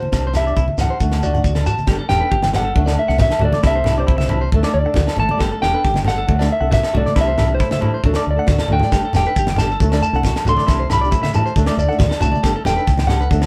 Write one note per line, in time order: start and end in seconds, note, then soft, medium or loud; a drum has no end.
0.00 0.32 C5 medium
0.00 high conga medium
0.12 0.51 C2 medium
0.12 0.26 C4 medium
0.12 0.27 D4 medium
0.12 0.27 G4 medium
0.12 muted nylon-string guitar stroke medium
0.12 muted clean electric guitar stroke medium
0.12 kick medium
0.12 snare medium
0.12 low agogo medium
0.12 shekere medium
0.27 0.33 C5 medium
0.34 0.46 E3 medium
0.34 0.46 C4 medium
0.34 0.46 D4 medium
0.34 0.44 E4 medium
0.34 0.46 G4 medium
0.34 0.76 E5 medium
0.34 snare medium
0.34 low agogo medium
0.34 shekere medium
0.47 0.60 C4 soft
0.47 0.60 D4 soft
0.47 0.59 G4 medium
0.47 0.54 D5 medium
0.47 shekere soft
0.57 0.67 C2 medium
0.57 0.65 E4 medium
0.57 kick medium
0.57 shekere medium
0.68 high conga medium
0.77 0.88 C#2 medium
0.77 0.93 E3 soft
0.77 0.93 C4 medium
0.77 0.93 D4 medium
0.77 1.42 F#5 medium
0.77 snare medium
0.77 low conga medium
0.77 low agogo medium
0.77 shekere medium
0.82 0.94 G4 medium
0.90 0.98 C5 medium
1.00 1.39 D2 medium
1.00 1.14 A3 medium
1.00 1.15 D4 medium
1.00 1.14 F#4 medium
1.00 muted clean electric guitar stroke medium
1.00 kick medium
1.00 shekere medium
1.12 snare medium
1.12 low agogo medium
1.23 1.34 A3 medium
1.23 1.34 D4 medium
1.23 1.31 F#4 medium
1.23 1.33 F#4 medium
1.23 1.68 D5 medium
1.23 high conga medium
1.23 shekere medium
1.34 1.47 D4 soft
1.34 1.47 F#4 medium
1.34 1.42 F#5 medium
1.34 low conga medium
1.34 shekere soft
1.44 1.64 D2 medium
1.44 1.52 F#4 medium
1.44 kick medium
1.44 high conga medium
1.44 shekere medium
1.55 1.63 A4 medium
1.55 snare medium
1.55 high conga medium
1.55 low agogo medium
1.66 1.75 F#4 medium
1.66 2.08 A5 loud
1.66 low conga medium
1.66 shekere medium
1.78 high conga medium
1.78 shekere soft
1.87 1.98 G1 loud
1.87 2.02 G3 medium
1.87 2.02 B3 medium
1.87 2.02 D4 medium
1.87 1.96 G4 medium
1.87 2.02 A4 medium
1.87 kick medium
1.87 snare medium
1.87 low agogo medium
1.99 2.07 A4 medium
2.09 2.20 E1 medium
2.09 2.21 G3 medium
2.09 2.21 B3 medium
2.09 2.20 D4 medium
2.09 2.18 G4 medium
2.09 2.19 A4 medium
2.09 2.55 G5 loud
2.09 snare medium
2.09 low conga medium
2.09 low agogo medium
2.21 2.35 B3 soft
2.21 2.34 D4 medium
2.21 2.34 A4 medium
2.21 2.29 B4 medium
2.31 2.71 G1 medium
2.31 2.40 G4 medium
2.31 kick medium
2.42 2.51 G5 medium
2.42 snare medium
2.42 high conga medium
2.53 2.68 G3 medium
2.53 2.68 B3 medium
2.53 2.62 G4 medium
2.53 2.69 A4 medium
2.53 2.99 F#5 loud
2.53 muted nylon-string guitar stroke medium
2.53 snare medium
2.53 low conga medium
2.53 low agogo medium
2.65 2.73 A4 medium
2.75 2.96 D2 medium
2.75 2.87 F#3 medium
2.75 2.87 A3 medium
2.75 2.86 D4 medium
2.75 2.84 A4 medium
2.75 kick loud
2.85 3.00 A3 soft
2.85 3.00 D4 medium
2.85 2.99 A4 soft
2.85 2.94 D5 medium
2.85 snare medium
2.85 low agogo medium
2.99 3.19 E5 medium
3.08 3.29 C2 loud
3.08 3.22 A3 soft
3.08 3.22 D4 soft
3.08 3.17 F#5 medium
3.08 snare soft
3.18 3.28 F#4 medium
3.18 3.41 E5 medium
3.18 kick loud
3.18 snare medium
3.18 low conga medium
3.31 3.39 A4 medium
3.31 snare medium
3.31 low agogo medium
3.39 3.52 D2 loud
3.39 3.55 F#3 medium
3.39 3.55 A3 medium
3.39 3.55 D4 medium
3.39 3.50 F#4 medium
3.39 3.55 A4 medium
3.39 low conga medium
3.45 3.66 D5 medium
3.53 3.61 D5 medium
3.53 snare soft
3.53 high conga medium
3.63 3.83 C2 loud
3.63 3.77 C4 medium
3.63 3.77 D4 medium
3.63 3.72 E4 medium
3.63 3.78 G4 medium
3.63 muted nylon-string guitar stroke medium
3.63 kick medium
3.63 snare medium
3.63 low agogo medium
3.67 3.97 E5 loud
3.76 3.83 C5 medium
3.84 4.05 C2 medium
3.84 3.98 E3 medium
3.84 3.98 C4 medium
3.84 3.96 D4 medium
3.84 3.94 E4 medium
3.84 snare medium
3.84 low conga medium
3.84 low agogo medium
3.88 3.96 G4 medium
3.97 4.11 C4 soft
3.97 4.10 D4 soft
3.97 4.10 G4 medium
3.97 4.40 C5 medium
3.97 4.05 D5 medium
4.07 4.47 C2 loud
4.07 4.16 E4 medium
4.07 kick medium
4.18 4.26 E5 medium
4.18 snare medium
4.18 high conga medium
4.29 4.43 E3 medium
4.29 4.44 C4 medium
4.29 4.44 D4 medium
4.29 4.38 E4 medium
4.29 4.44 G4 medium
4.29 low conga medium
4.29 low agogo medium
4.41 4.49 C5 medium
4.52 4.63 D2 medium
4.52 4.64 F#3 medium
4.52 4.64 A3 medium
4.52 4.62 A4 loud
4.52 muted nylon-string guitar stroke medium
4.52 kick loud
4.63 4.77 D4 medium
4.63 4.76 A4 medium
4.63 4.72 D5 medium
4.63 muted nylon-string guitar stroke soft
4.63 snare medium
4.63 low agogo medium
4.74 4.84 D2 medium
4.74 5.15 D5 medium
4.84 4.99 A3 medium
4.84 4.98 D4 medium
4.84 4.98 A4 medium
4.84 muted clean electric guitar stroke medium
4.94 5.07 D2 loud
4.94 5.05 F#4 medium
4.94 kick medium
4.94 snare medium
4.94 low conga medium
5.07 5.16 A4 medium
5.07 snare medium
5.07 low agogo medium
5.16 5.28 G#1 loud
5.16 5.31 A3 medium
5.16 5.31 D4 medium
5.16 5.32 A4 medium
5.16 5.27 A4 medium
5.16 5.62 A5 loud
5.16 muted nylon-string guitar stroke medium
5.16 low conga medium
5.29 5.38 D5 medium
5.29 high conga medium
5.37 5.51 G1 loud
5.37 5.52 G3 medium
5.37 5.52 B3 medium
5.37 5.52 D4 medium
5.37 5.52 A4 medium
5.37 kick medium
5.37 snare medium
5.37 low agogo medium
5.41 5.49 G4 medium
5.52 5.60 A4 medium
5.60 5.73 E1 medium
5.60 5.73 G3 medium
5.60 5.73 B3 medium
5.60 5.72 D4 medium
5.60 5.71 G4 medium
5.60 5.71 A4 medium
5.60 6.07 G5 loud
5.60 snare medium
5.60 low agogo medium
5.72 5.87 B3 soft
5.72 5.86 D4 medium
5.72 5.86 A4 medium
5.72 5.82 B4 medium
5.84 6.24 G1 loud
5.84 5.93 G4 medium
5.84 kick medium
5.84 snare soft
5.94 6.04 G5 medium
5.94 snare medium
5.94 high conga medium
6.04 6.19 G3 medium
6.04 6.19 B3 medium
6.04 6.19 D4 medium
6.04 6.14 G4 medium
6.04 6.19 A4 medium
6.04 6.52 F#5 loud
6.04 snare medium
6.04 low conga medium
6.04 low agogo medium
6.18 6.26 A4 medium
6.27 6.48 D2 loud
6.27 6.39 F#3 medium
6.27 6.39 A3 medium
6.27 6.39 D4 medium
6.27 6.38 A4 medium
6.27 kick medium
6.39 6.53 A3 soft
6.39 6.53 D4 medium
6.39 6.52 A4 medium
6.39 6.47 D5 medium
6.39 snare medium
6.39 low agogo medium
6.52 6.72 E5 medium
6.61 6.81 C2 loud
6.61 6.75 A3 medium
6.61 6.75 D4 medium
6.61 6.74 A4 medium
6.61 6.69 F#5 medium
6.71 6.80 F#4 medium
6.71 6.93 E5 medium
6.71 kick medium
6.71 snare medium
6.71 low conga medium
6.83 6.91 A4 medium
6.83 snare medium
6.83 low agogo medium
6.93 7.05 C2 medium
6.93 7.07 F#3 medium
6.93 7.07 A3 medium
6.93 7.08 D4 medium
6.93 7.02 F#4 medium
6.93 7.08 A4 medium
6.93 low conga medium
6.97 7.18 D5 medium
7.06 7.14 D5 medium
7.06 snare soft
7.06 high conga medium
7.15 7.36 C2 loud
7.15 7.29 E3 medium
7.15 7.30 C4 medium
7.15 7.30 D4 medium
7.15 7.24 E4 medium
7.15 7.30 G4 medium
7.15 kick medium
7.15 snare medium
7.15 low agogo medium
7.21 7.53 E5 loud
7.28 7.35 C5 medium
7.36 7.58 C2 medium
7.36 7.49 E3 medium
7.36 7.48 C4 medium
7.36 7.47 D4 medium
7.36 7.47 E4 medium
7.36 7.45 G4 medium
7.36 snare medium
7.36 low conga medium
7.36 low agogo medium
7.47 7.62 C4 soft
7.47 7.62 D4 soft
7.47 7.61 G4 medium
7.55 7.93 C5 medium
7.59 7.99 A2 medium
7.59 7.69 E4 medium
7.59 kick loud
7.59 snare soft
7.71 7.80 E5 medium
7.71 snare medium
7.71 high conga medium
7.80 7.95 E3 medium
7.80 7.95 D4 medium
7.80 7.91 E4 medium
7.80 7.95 G4 medium
7.80 low conga medium
7.80 low agogo medium
7.94 8.02 C5 medium
8.04 8.14 D2 loud
8.04 8.15 F#3 medium
8.04 8.14 D4 medium
8.04 8.14 A4 medium
8.04 muted nylon-string guitar stroke medium
8.04 kick medium
8.04 high conga medium
8.14 8.29 A3 soft
8.14 8.28 D4 soft
8.14 8.28 A4 medium
8.14 8.24 D5 medium
8.14 snare medium
8.14 low agogo medium
8.27 8.37 D2 medium
8.27 8.74 D5 medium
8.36 8.51 A3 soft
8.36 8.50 D4 medium
8.36 8.50 A4 medium
8.36 8.46 F#5 medium
8.47 8.58 D2 loud
8.47 8.57 F#4 medium
8.47 kick medium
8.47 snare medium
8.47 low conga medium
8.59 8.68 A4 medium
8.59 snare medium
8.59 high conga medium
8.59 low agogo medium
8.68 8.80 D2 loud
8.68 8.82 F#3 medium
8.68 8.83 A3 medium
8.68 8.83 D4 medium
8.68 8.84 A4 medium
8.68 low conga medium
8.72 8.80 F#4 medium
8.72 9.15 G5 medium
8.80 snare soft
8.80 low conga medium
8.84 8.91 D5 medium
8.89 9.02 G1 loud
8.89 9.04 B3 medium
8.89 9.05 D4 medium
8.89 9.01 G4 medium
8.89 9.05 A4 medium
8.89 kick medium
8.89 snare medium
8.89 low agogo medium
8.89 shekere medium
9.05 9.12 A4 medium
9.13 9.24 E1 medium
9.13 9.26 D4 medium
9.13 9.24 G4 medium
9.13 9.24 A4 medium
9.13 9.58 G5 loud
9.13 snare medium
9.13 low conga medium
9.13 low agogo medium
9.13 shekere loud
9.25 9.39 D4 soft
9.25 9.38 A4 medium
9.25 9.34 B4 medium
9.25 shekere soft
9.36 9.75 G1 loud
9.36 9.46 G4 medium
9.36 kick medium
9.36 shekere medium
9.47 9.57 G5 medium
9.47 snare medium
9.47 high conga medium
9.56 9.72 B3 medium
9.56 9.72 D4 medium
9.56 10.01 A5 loud
9.56 snare medium
9.56 low conga medium
9.56 low agogo medium
9.56 shekere medium
9.60 9.68 G4 medium
9.60 9.73 A4 medium
9.71 9.79 A4 medium
9.71 shekere soft
9.80 10.00 D2 medium
9.80 9.92 F#3 medium
9.80 9.90 A3 medium
9.80 9.89 A4 medium
9.80 muted nylon-string guitar stroke medium
9.80 kick medium
9.80 shekere medium
9.90 10.04 A3 soft
9.90 10.04 D4 medium
9.90 10.03 A4 medium
9.90 10.01 D5 medium
9.90 snare medium
9.90 low agogo medium
10.02 10.43 A5 loud
10.02 shekere medium
10.13 10.33 C2 loud
10.13 10.26 A3 medium
10.13 10.26 D4 medium
10.13 10.26 A4 medium
10.13 10.23 F#5 medium
10.13 shekere soft
10.23 10.34 F#4 medium
10.23 kick medium
10.23 snare medium
10.23 low conga medium
10.23 shekere medium
10.36 10.44 A4 medium
10.36 snare medium
10.36 low agogo medium
10.45 10.56 C2 medium
10.45 10.60 F#3 medium
10.45 10.60 A3 medium
10.45 10.60 D4 medium
10.45 10.55 F#4 medium
10.45 10.61 A4 medium
10.45 10.92 C6 loud
10.45 low conga medium
10.45 shekere loud
10.57 10.65 D5 medium
10.57 snare soft
10.57 high conga medium
10.57 shekere soft
10.67 10.88 C2 loud
10.67 10.82 E3 medium
10.67 10.82 C4 medium
10.67 10.82 D4 medium
10.67 10.76 E4 medium
10.67 10.82 G4 medium
10.67 kick medium
10.67 snare medium
10.67 low agogo medium
10.67 shekere medium
10.80 10.87 C5 medium
10.90 11.09 C2 medium
10.90 11.01 E3 medium
10.90 11.02 D4 medium
10.90 10.98 E4 medium
10.90 11.02 G4 medium
10.90 11.32 B5 loud
10.90 snare medium
10.90 low conga medium
10.90 low agogo medium
10.90 shekere medium
11.01 11.16 C4 soft
11.01 11.15 D4 soft
11.01 11.15 G4 medium
11.01 11.09 D5 medium
11.01 shekere soft
11.11 11.51 A2 medium
11.11 11.20 E4 medium
11.11 kick loud
11.11 snare soft
11.11 shekere medium
11.23 11.31 E5 medium
11.23 snare medium
11.23 high conga medium
11.34 11.47 E3 medium
11.34 11.48 C4 medium
11.34 11.48 D4 medium
11.34 11.42 E4 medium
11.34 11.48 G4 medium
11.34 11.80 A5 loud
11.34 low conga medium
11.34 low agogo medium
11.34 shekere medium
11.45 11.53 C5 medium
11.45 shekere soft
11.56 11.66 D2 loud
11.56 11.67 F#3 medium
11.56 11.67 A3 medium
11.56 11.67 D4 medium
11.56 11.66 A4 loud
11.56 kick loud
11.56 shekere medium
11.66 11.81 A3 soft
11.66 11.80 D4 medium
11.66 11.80 A4 medium
11.66 11.75 D5 medium
11.66 snare medium
11.66 low agogo medium
11.77 11.87 D2 medium
11.77 12.19 D5 medium
11.77 shekere medium
11.89 12.03 A3 medium
11.89 12.02 D4 medium
11.89 12.01 A4 medium
11.89 11.96 F#5 medium
11.89 shekere soft
11.99 12.10 D2 loud
11.99 12.07 F#4 medium
11.99 kick medium
11.99 snare medium
11.99 low conga medium
11.99 shekere medium
12.09 12.17 A4 medium
12.09 snare medium
12.09 low agogo medium
12.20 12.32 C2 loud
12.20 12.35 F#3 medium
12.20 12.35 A3 medium
12.20 12.36 D4 medium
12.20 12.29 F#4 medium
12.20 12.36 A4 medium
12.20 12.66 A5 loud
12.20 low conga medium
12.20 shekere medium
12.32 12.40 D5 medium
12.32 high conga medium
12.32 shekere soft
12.43 12.54 G1 loud
12.43 12.57 B3 medium
12.43 12.56 D4 medium
12.43 12.52 G4 medium
12.43 12.57 A4 medium
12.43 kick medium
12.43 snare medium
12.43 low agogo medium
12.43 shekere medium
12.56 12.63 A4 medium
12.65 12.75 E1 medium
12.65 12.76 B3 medium
12.65 12.77 D4 medium
12.65 12.73 G4 medium
12.65 12.75 A4 medium
12.65 13.06 G5 loud
12.65 snare medium
12.65 low conga medium
12.65 low agogo medium
12.65 shekere medium
12.76 12.90 D4 soft
12.76 12.89 A4 medium
12.76 12.84 B4 medium
12.76 shekere soft
12.87 13.26 C#2 loud
12.87 kick loud
12.87 snare soft
12.87 shekere medium
12.98 13.07 G5 medium
12.98 snare medium
12.98 high conga medium
13.07 13.22 B3 medium
13.07 13.22 D4 medium
13.07 13.18 G4 medium
13.07 13.23 A4 medium
13.07 13.46 F#5 medium
13.07 snare medium
13.07 low conga medium
13.07 low agogo medium
13.21 13.28 B4 medium
13.21 shekere soft
13.29 13.46 D2 loud
13.29 13.41 F#3 medium
13.29 13.42 A3 medium
13.29 13.42 D4 medium
13.29 13.41 A4 medium
13.29 kick medium
13.29 shekere medium
13.42 13.46 A4 medium
13.42 muted clean electric guitar stroke medium
13.42 snare medium
13.42 low agogo medium